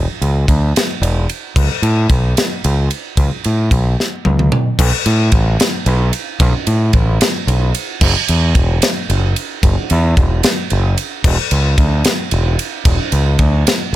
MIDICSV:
0, 0, Header, 1, 3, 480
1, 0, Start_track
1, 0, Tempo, 538117
1, 1390, Time_signature, 6, 3, 24, 8
1, 12450, End_track
2, 0, Start_track
2, 0, Title_t, "Fingered electric bass"
2, 0, Program_c, 0, 33
2, 192, Note_on_c, 0, 37, 89
2, 400, Note_off_c, 0, 37, 0
2, 431, Note_on_c, 0, 38, 83
2, 640, Note_off_c, 0, 38, 0
2, 905, Note_on_c, 0, 28, 93
2, 1117, Note_off_c, 0, 28, 0
2, 1392, Note_on_c, 0, 37, 98
2, 1496, Note_off_c, 0, 37, 0
2, 1627, Note_on_c, 0, 45, 92
2, 1839, Note_off_c, 0, 45, 0
2, 1868, Note_on_c, 0, 35, 98
2, 2080, Note_off_c, 0, 35, 0
2, 2361, Note_on_c, 0, 37, 96
2, 2567, Note_off_c, 0, 37, 0
2, 2830, Note_on_c, 0, 37, 102
2, 2936, Note_off_c, 0, 37, 0
2, 3082, Note_on_c, 0, 45, 90
2, 3289, Note_off_c, 0, 45, 0
2, 3312, Note_on_c, 0, 35, 92
2, 3523, Note_off_c, 0, 35, 0
2, 3801, Note_on_c, 0, 37, 95
2, 4008, Note_off_c, 0, 37, 0
2, 4275, Note_on_c, 0, 35, 103
2, 4380, Note_off_c, 0, 35, 0
2, 4512, Note_on_c, 0, 45, 97
2, 4723, Note_off_c, 0, 45, 0
2, 4745, Note_on_c, 0, 33, 93
2, 4959, Note_off_c, 0, 33, 0
2, 5230, Note_on_c, 0, 35, 96
2, 5442, Note_off_c, 0, 35, 0
2, 5713, Note_on_c, 0, 35, 109
2, 5819, Note_off_c, 0, 35, 0
2, 5950, Note_on_c, 0, 45, 93
2, 6162, Note_off_c, 0, 45, 0
2, 6186, Note_on_c, 0, 33, 98
2, 6399, Note_off_c, 0, 33, 0
2, 6666, Note_on_c, 0, 35, 98
2, 6880, Note_off_c, 0, 35, 0
2, 7149, Note_on_c, 0, 30, 108
2, 7256, Note_off_c, 0, 30, 0
2, 7397, Note_on_c, 0, 40, 98
2, 7605, Note_off_c, 0, 40, 0
2, 7627, Note_on_c, 0, 28, 90
2, 7839, Note_off_c, 0, 28, 0
2, 8113, Note_on_c, 0, 30, 92
2, 8323, Note_off_c, 0, 30, 0
2, 8593, Note_on_c, 0, 30, 104
2, 8697, Note_off_c, 0, 30, 0
2, 8838, Note_on_c, 0, 40, 102
2, 9045, Note_off_c, 0, 40, 0
2, 9072, Note_on_c, 0, 28, 94
2, 9282, Note_off_c, 0, 28, 0
2, 9558, Note_on_c, 0, 30, 93
2, 9765, Note_off_c, 0, 30, 0
2, 10028, Note_on_c, 0, 28, 106
2, 10135, Note_off_c, 0, 28, 0
2, 10272, Note_on_c, 0, 37, 98
2, 10481, Note_off_c, 0, 37, 0
2, 10507, Note_on_c, 0, 38, 88
2, 10719, Note_off_c, 0, 38, 0
2, 10989, Note_on_c, 0, 28, 91
2, 11200, Note_off_c, 0, 28, 0
2, 11465, Note_on_c, 0, 28, 100
2, 11572, Note_off_c, 0, 28, 0
2, 11706, Note_on_c, 0, 37, 95
2, 11918, Note_off_c, 0, 37, 0
2, 11949, Note_on_c, 0, 38, 93
2, 12160, Note_off_c, 0, 38, 0
2, 12450, End_track
3, 0, Start_track
3, 0, Title_t, "Drums"
3, 196, Note_on_c, 9, 51, 63
3, 285, Note_off_c, 9, 51, 0
3, 430, Note_on_c, 9, 36, 83
3, 433, Note_on_c, 9, 51, 70
3, 520, Note_off_c, 9, 36, 0
3, 522, Note_off_c, 9, 51, 0
3, 680, Note_on_c, 9, 51, 96
3, 690, Note_on_c, 9, 38, 110
3, 769, Note_off_c, 9, 51, 0
3, 779, Note_off_c, 9, 38, 0
3, 919, Note_on_c, 9, 51, 75
3, 1008, Note_off_c, 9, 51, 0
3, 1155, Note_on_c, 9, 51, 66
3, 1244, Note_off_c, 9, 51, 0
3, 1391, Note_on_c, 9, 36, 114
3, 1395, Note_on_c, 9, 49, 99
3, 1481, Note_off_c, 9, 36, 0
3, 1485, Note_off_c, 9, 49, 0
3, 1632, Note_on_c, 9, 51, 68
3, 1721, Note_off_c, 9, 51, 0
3, 1869, Note_on_c, 9, 51, 73
3, 1870, Note_on_c, 9, 36, 82
3, 1958, Note_off_c, 9, 51, 0
3, 1959, Note_off_c, 9, 36, 0
3, 2115, Note_on_c, 9, 51, 97
3, 2125, Note_on_c, 9, 38, 117
3, 2204, Note_off_c, 9, 51, 0
3, 2214, Note_off_c, 9, 38, 0
3, 2358, Note_on_c, 9, 51, 75
3, 2447, Note_off_c, 9, 51, 0
3, 2592, Note_on_c, 9, 51, 71
3, 2681, Note_off_c, 9, 51, 0
3, 2830, Note_on_c, 9, 36, 110
3, 2830, Note_on_c, 9, 51, 94
3, 2919, Note_off_c, 9, 36, 0
3, 2919, Note_off_c, 9, 51, 0
3, 3072, Note_on_c, 9, 51, 74
3, 3161, Note_off_c, 9, 51, 0
3, 3310, Note_on_c, 9, 36, 87
3, 3314, Note_on_c, 9, 51, 74
3, 3399, Note_off_c, 9, 36, 0
3, 3403, Note_off_c, 9, 51, 0
3, 3570, Note_on_c, 9, 38, 61
3, 3659, Note_off_c, 9, 38, 0
3, 3791, Note_on_c, 9, 48, 79
3, 3880, Note_off_c, 9, 48, 0
3, 3918, Note_on_c, 9, 47, 76
3, 4007, Note_off_c, 9, 47, 0
3, 4031, Note_on_c, 9, 45, 91
3, 4121, Note_off_c, 9, 45, 0
3, 4271, Note_on_c, 9, 36, 114
3, 4273, Note_on_c, 9, 49, 118
3, 4360, Note_off_c, 9, 36, 0
3, 4362, Note_off_c, 9, 49, 0
3, 4510, Note_on_c, 9, 51, 72
3, 4600, Note_off_c, 9, 51, 0
3, 4743, Note_on_c, 9, 51, 77
3, 4748, Note_on_c, 9, 36, 83
3, 4832, Note_off_c, 9, 51, 0
3, 4837, Note_off_c, 9, 36, 0
3, 4993, Note_on_c, 9, 51, 99
3, 5003, Note_on_c, 9, 38, 113
3, 5082, Note_off_c, 9, 51, 0
3, 5092, Note_off_c, 9, 38, 0
3, 5228, Note_on_c, 9, 51, 79
3, 5317, Note_off_c, 9, 51, 0
3, 5467, Note_on_c, 9, 51, 74
3, 5556, Note_off_c, 9, 51, 0
3, 5707, Note_on_c, 9, 51, 100
3, 5708, Note_on_c, 9, 36, 120
3, 5796, Note_off_c, 9, 51, 0
3, 5798, Note_off_c, 9, 36, 0
3, 5947, Note_on_c, 9, 51, 78
3, 6036, Note_off_c, 9, 51, 0
3, 6182, Note_on_c, 9, 51, 77
3, 6187, Note_on_c, 9, 36, 84
3, 6271, Note_off_c, 9, 51, 0
3, 6276, Note_off_c, 9, 36, 0
3, 6430, Note_on_c, 9, 51, 105
3, 6439, Note_on_c, 9, 38, 112
3, 6519, Note_off_c, 9, 51, 0
3, 6529, Note_off_c, 9, 38, 0
3, 6673, Note_on_c, 9, 51, 87
3, 6762, Note_off_c, 9, 51, 0
3, 6909, Note_on_c, 9, 51, 84
3, 6998, Note_off_c, 9, 51, 0
3, 7144, Note_on_c, 9, 57, 108
3, 7147, Note_on_c, 9, 36, 110
3, 7233, Note_off_c, 9, 57, 0
3, 7236, Note_off_c, 9, 36, 0
3, 7389, Note_on_c, 9, 51, 75
3, 7478, Note_off_c, 9, 51, 0
3, 7626, Note_on_c, 9, 51, 84
3, 7628, Note_on_c, 9, 36, 80
3, 7715, Note_off_c, 9, 51, 0
3, 7717, Note_off_c, 9, 36, 0
3, 7867, Note_on_c, 9, 51, 103
3, 7876, Note_on_c, 9, 38, 118
3, 7956, Note_off_c, 9, 51, 0
3, 7966, Note_off_c, 9, 38, 0
3, 8114, Note_on_c, 9, 51, 84
3, 8203, Note_off_c, 9, 51, 0
3, 8352, Note_on_c, 9, 51, 72
3, 8441, Note_off_c, 9, 51, 0
3, 8590, Note_on_c, 9, 36, 112
3, 8593, Note_on_c, 9, 51, 99
3, 8680, Note_off_c, 9, 36, 0
3, 8682, Note_off_c, 9, 51, 0
3, 8828, Note_on_c, 9, 51, 69
3, 8918, Note_off_c, 9, 51, 0
3, 9071, Note_on_c, 9, 51, 74
3, 9072, Note_on_c, 9, 36, 86
3, 9160, Note_off_c, 9, 51, 0
3, 9161, Note_off_c, 9, 36, 0
3, 9307, Note_on_c, 9, 51, 98
3, 9317, Note_on_c, 9, 38, 113
3, 9396, Note_off_c, 9, 51, 0
3, 9406, Note_off_c, 9, 38, 0
3, 9547, Note_on_c, 9, 51, 78
3, 9636, Note_off_c, 9, 51, 0
3, 9790, Note_on_c, 9, 51, 73
3, 9879, Note_off_c, 9, 51, 0
3, 10028, Note_on_c, 9, 36, 118
3, 10030, Note_on_c, 9, 49, 102
3, 10118, Note_off_c, 9, 36, 0
3, 10119, Note_off_c, 9, 49, 0
3, 10267, Note_on_c, 9, 51, 79
3, 10356, Note_off_c, 9, 51, 0
3, 10505, Note_on_c, 9, 51, 84
3, 10506, Note_on_c, 9, 36, 88
3, 10595, Note_off_c, 9, 51, 0
3, 10596, Note_off_c, 9, 36, 0
3, 10744, Note_on_c, 9, 51, 104
3, 10754, Note_on_c, 9, 38, 111
3, 10833, Note_off_c, 9, 51, 0
3, 10843, Note_off_c, 9, 38, 0
3, 10983, Note_on_c, 9, 51, 89
3, 11072, Note_off_c, 9, 51, 0
3, 11230, Note_on_c, 9, 51, 78
3, 11319, Note_off_c, 9, 51, 0
3, 11464, Note_on_c, 9, 51, 118
3, 11465, Note_on_c, 9, 36, 118
3, 11553, Note_off_c, 9, 51, 0
3, 11554, Note_off_c, 9, 36, 0
3, 11702, Note_on_c, 9, 51, 73
3, 11792, Note_off_c, 9, 51, 0
3, 11941, Note_on_c, 9, 51, 79
3, 11944, Note_on_c, 9, 36, 85
3, 12031, Note_off_c, 9, 51, 0
3, 12034, Note_off_c, 9, 36, 0
3, 12192, Note_on_c, 9, 51, 103
3, 12202, Note_on_c, 9, 38, 113
3, 12281, Note_off_c, 9, 51, 0
3, 12291, Note_off_c, 9, 38, 0
3, 12450, End_track
0, 0, End_of_file